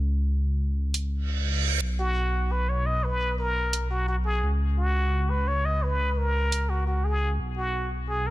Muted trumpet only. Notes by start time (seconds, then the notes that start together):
1.99 F#4
2.51 B4
2.69 C#5
2.86 D#5
3.04 B4
3.38 A#4
3.91 F#4
4.08 F#4
4.26 G#4
4.78 F#4
5.30 B4
5.48 C#5
5.65 D#5
5.83 B4
6.17 A#4
6.70 F#4
6.87 F#4
7.05 G#4
7.57 F#4
8.09 G#4
8.27 A#4